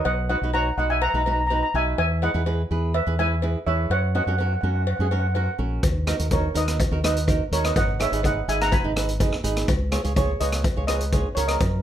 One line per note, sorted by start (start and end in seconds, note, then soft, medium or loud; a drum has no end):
0.05 0.34 B1 loud
0.05 0.28 D#5 medium
0.05 0.28 F#5 loud
0.05 cowbell medium
0.29 0.37 D#4 medium
0.29 0.37 F#4 medium
0.29 0.37 B4 medium
0.29 0.52 D#5 medium
0.29 0.53 F#5 medium
0.29 cowbell medium
0.41 0.70 B1 medium
0.41 0.50 D#4 medium
0.41 0.50 F#4 medium
0.41 0.50 B4 medium
0.53 0.68 D#4 medium
0.53 0.68 F#4 medium
0.53 0.69 C#5 medium
0.53 0.76 F#5 medium
0.53 0.78 A#5 loud
0.53 cowbell medium
0.77 1.06 B1 medium
0.77 1.00 D#4 medium
0.77 1.00 F#4 medium
0.77 1.00 B4 medium
0.77 0.89 D#5 medium
0.77 0.90 F#5 medium
0.90 1.01 E5 medium
0.90 1.02 G#5 loud
1.02 1.09 F#5 medium
1.02 1.08 A#5 loud
1.02 cowbell medium
1.09 1.16 A#5 medium
1.14 1.61 B1 medium
1.14 1.21 D#4 medium
1.14 1.21 F#4 medium
1.14 1.21 B4 medium
1.14 1.23 A#5 medium
1.24 1.41 D#4 medium
1.24 1.41 F#4 medium
1.24 1.41 B4 medium
1.24 1.30 A#5 medium
1.24 cowbell medium
1.32 1.39 A#5 medium
1.40 1.46 A#5 medium
1.47 1.54 A#5 medium
1.47 cowbell medium
1.51 1.65 D#4 medium
1.51 1.65 F#4 medium
1.51 1.65 B4 medium
1.55 1.62 A#5 medium
1.63 1.70 A#5 medium
1.74 1.93 B1 medium
1.74 1.98 D#4 medium
1.74 1.98 F#4 medium
1.74 1.98 B4 medium
1.74 1.97 E5 medium
1.74 1.97 G#5 loud
1.98 2.27 E2 loud
1.98 2.21 E5 medium
1.98 2.23 G#5 loud
1.98 cowbell loud
2.22 2.30 E4 medium
2.22 2.30 G#4 medium
2.22 2.30 B4 medium
2.22 2.91 D#5 medium
2.22 2.97 F#5 loud
2.22 cowbell medium
2.34 2.63 E2 medium
2.34 2.41 E4 medium
2.34 2.41 G#4 medium
2.34 2.41 B4 medium
2.46 2.61 E4 medium
2.46 2.61 G#4 medium
2.46 2.61 B4 medium
2.46 cowbell medium
2.71 2.99 E2 medium
2.71 2.92 E4 medium
2.71 2.92 G#4 medium
2.71 2.92 B4 medium
2.94 3.17 B4 medium
2.94 3.18 E5 medium
2.94 cowbell medium
3.07 3.54 E2 medium
3.07 3.14 E4 medium
3.07 3.14 G#4 medium
3.07 3.14 B4 medium
3.19 3.33 E4 medium
3.19 3.33 G#4 medium
3.19 3.33 B4 medium
3.19 3.64 E5 medium
3.19 3.63 G#5 loud
3.19 cowbell medium
3.42 3.57 E4 medium
3.42 3.57 G#4 medium
3.42 3.57 B4 medium
3.42 cowbell medium
3.66 3.86 E2 medium
3.66 3.91 E4 medium
3.66 3.91 G#4 medium
3.66 3.91 B4 medium
3.66 3.89 C#5 medium
3.66 3.91 E5 medium
3.90 4.19 F#2 loud
3.90 4.13 C#5 medium
3.90 4.13 F#5 medium
3.90 cowbell loud
4.15 4.22 C#4 medium
4.15 4.22 F#4 medium
4.15 4.22 A#4 medium
4.15 4.22 D#5 medium
4.15 4.22 F#5 medium
4.15 cowbell medium
4.23 4.55 F#2 medium
4.23 4.34 C#4 medium
4.23 4.30 F#5 medium
4.28 4.34 F#4 medium
4.28 4.35 A#4 medium
4.28 4.36 F#5 medium
4.38 4.54 C#4 medium
4.38 4.54 F#4 medium
4.38 4.54 A#4 medium
4.38 4.44 F#5 medium
4.38 cowbell medium
4.46 4.52 F#5 medium
4.53 4.59 F#5 medium
4.61 4.92 F#2 medium
4.61 4.85 C#4 medium
4.61 4.85 F#4 medium
4.61 4.85 A#4 medium
4.61 4.67 F#5 medium
4.69 4.74 F#5 soft
4.75 4.81 F#5 medium
4.82 4.89 F#5 soft
4.87 4.96 F#5 medium
4.87 cowbell medium
4.97 5.47 F#2 medium
4.97 5.07 C#4 medium
4.97 5.06 F#4 medium
4.97 5.04 F#5 soft
5.01 5.07 G#4 medium
5.01 5.11 F#5 medium
5.11 5.26 C#4 medium
5.11 5.26 F#4 medium
5.11 5.26 A#4 medium
5.11 5.18 F#5 medium
5.11 cowbell medium
5.20 5.26 F#5 medium
5.27 5.33 F#5 medium
5.34 5.50 C#4 medium
5.34 5.50 F#4 medium
5.34 5.50 A#4 medium
5.34 5.41 F#5 medium
5.34 cowbell medium
5.44 5.50 F#5 medium
5.58 5.78 A#1 medium
5.58 5.83 C#4 medium
5.58 5.83 F#4 medium
5.58 5.83 A#4 medium
5.83 6.12 D#2 loud
5.83 kick loud
5.83 closed hi-hat medium
5.83 cowbell medium
6.07 6.14 D#4 medium
6.07 6.14 F#4 medium
6.07 6.15 A#4 medium
6.07 cross-stick medium
6.07 closed hi-hat medium
6.07 cowbell medium
6.19 6.48 D#2 medium
6.19 6.26 D#4 medium
6.19 6.26 F#4 medium
6.19 6.26 A#4 medium
6.19 closed hi-hat medium
6.31 6.46 D#4 medium
6.31 6.46 F#4 medium
6.31 6.46 A#4 medium
6.31 6.54 A#4 medium
6.31 6.57 C#5 medium
6.31 kick medium
6.31 closed hi-hat medium
6.31 cowbell medium
6.54 6.84 D#2 medium
6.54 6.77 D#4 medium
6.54 6.77 F#4 medium
6.54 6.77 A#4 medium
6.54 7.01 B4 medium
6.54 7.04 D#5 medium
6.54 closed hi-hat medium
6.68 cross-stick medium
6.68 closed hi-hat medium
6.80 kick loud
6.80 closed hi-hat medium
6.80 cowbell medium
6.91 7.39 D#2 medium
6.91 6.98 D#4 medium
6.91 6.99 F#4 medium
6.91 6.99 A#4 medium
7.04 7.18 D#4 medium
7.04 7.18 F#4 medium
7.04 7.18 A#4 medium
7.04 7.49 B4 medium
7.04 7.54 D#5 medium
7.04 cross-stick medium
7.04 closed hi-hat medium
7.04 cowbell medium
7.17 closed hi-hat medium
7.27 7.42 D#4 medium
7.27 7.42 F#4 medium
7.27 7.42 A#4 medium
7.27 kick medium
7.27 closed hi-hat medium
7.27 cowbell medium
7.51 7.71 D#2 medium
7.51 7.76 D#4 medium
7.51 7.76 F#4 medium
7.51 7.63 A#4 medium
7.51 7.76 A#4 medium
7.51 7.65 C#5 medium
7.51 closed hi-hat medium
7.64 7.70 B4 medium
7.64 7.70 D#5 medium
7.64 cross-stick medium
7.64 closed hi-hat medium
7.76 8.05 G#1 loud
7.76 7.98 D#5 medium
7.76 8.01 F#5 medium
7.76 kick loud
7.76 closed hi-hat medium
7.76 cowbell medium
7.99 8.07 D#4 medium
7.99 8.07 G#4 medium
7.99 8.07 B4 medium
7.99 8.23 C#5 medium
7.99 8.23 E5 medium
7.99 cross-stick medium
7.99 closed hi-hat medium
7.99 cowbell medium
8.12 8.40 G#1 medium
8.12 8.19 D#4 medium
8.12 8.19 G#4 medium
8.12 8.20 B4 medium
8.12 closed hi-hat medium
8.23 8.39 D#4 medium
8.23 8.39 G#4 medium
8.23 8.39 B4 medium
8.23 8.47 D#5 medium
8.23 8.47 F#5 medium
8.23 kick medium
8.23 closed hi-hat medium
8.23 cowbell medium
8.48 8.77 G#1 medium
8.48 8.70 D#4 medium
8.48 8.70 G#4 medium
8.48 8.70 B4 medium
8.48 8.60 E5 medium
8.48 8.61 G#5 loud
8.48 closed hi-hat medium
8.61 8.72 F#5 medium
8.61 8.73 A#5 loud
8.61 cross-stick medium
8.61 closed hi-hat medium
8.72 9.40 G#5 medium
8.72 9.41 B5 medium
8.72 kick loud
8.72 closed hi-hat medium
8.72 cowbell medium
8.84 9.32 G#1 medium
8.84 8.91 D#4 medium
8.84 8.91 G#4 medium
8.84 8.92 B4 medium
8.96 9.11 D#4 medium
8.96 9.11 G#4 medium
8.96 9.11 B4 medium
8.96 cross-stick medium
8.96 closed hi-hat medium
8.96 cowbell medium
9.09 closed hi-hat medium
9.20 9.35 D#4 medium
9.20 9.35 G#4 medium
9.20 9.35 B4 medium
9.20 kick medium
9.20 closed hi-hat medium
9.20 cowbell medium
9.32 cross-stick medium
9.44 9.63 G#1 medium
9.44 9.68 D#4 medium
9.44 9.68 G#4 medium
9.44 9.68 B4 loud
9.44 closed hi-hat medium
9.57 cross-stick medium
9.57 closed hi-hat medium
9.68 9.97 C#2 loud
9.68 kick loud
9.68 closed hi-hat medium
9.68 cowbell loud
9.92 9.99 F4 medium
9.92 9.99 G#4 medium
9.92 10.00 C#5 loud
9.92 cross-stick medium
9.92 closed hi-hat medium
9.92 cowbell medium
10.04 10.33 C#2 medium
10.04 10.11 F4 medium
10.04 10.12 G#4 medium
10.04 10.12 C#5 medium
10.04 closed hi-hat medium
10.16 10.31 F4 medium
10.16 10.31 G#4 medium
10.16 10.39 G#4 medium
10.16 10.31 C#5 medium
10.16 10.41 C#5 medium
10.16 kick medium
10.16 closed hi-hat medium
10.16 cowbell medium
10.40 10.70 C#2 medium
10.40 10.62 F4 medium
10.40 10.62 G#4 medium
10.40 10.86 B4 medium
10.40 10.62 C#5 medium
10.40 10.85 D#5 medium
10.40 closed hi-hat medium
10.52 cross-stick medium
10.52 closed hi-hat medium
10.64 kick loud
10.64 closed hi-hat medium
10.64 cowbell loud
10.76 11.25 C#2 medium
10.76 10.84 F4 medium
10.76 10.84 G#4 medium
10.76 10.84 C#5 medium
10.87 11.03 F4 medium
10.87 11.03 G#4 medium
10.87 11.34 B4 medium
10.87 11.03 C#5 medium
10.87 11.37 D#5 medium
10.87 cross-stick medium
10.87 closed hi-hat medium
10.87 cowbell medium
11.01 closed hi-hat medium
11.12 11.27 F4 medium
11.12 11.27 G#4 medium
11.12 11.28 C#5 medium
11.12 kick medium
11.12 closed hi-hat medium
11.12 cowbell medium
11.35 11.56 C#2 medium
11.35 11.61 F4 medium
11.35 11.61 G#4 medium
11.35 11.48 A#4 medium
11.35 11.48 C#5 medium
11.35 11.61 C#5 medium
11.35 closed hi-hat medium
11.48 11.82 A#4 medium
11.48 11.82 D#5 medium
11.48 cross-stick medium
11.48 closed hi-hat medium
11.60 11.82 F#2 loud
11.60 kick loud
11.60 closed hi-hat medium
11.60 cowbell loud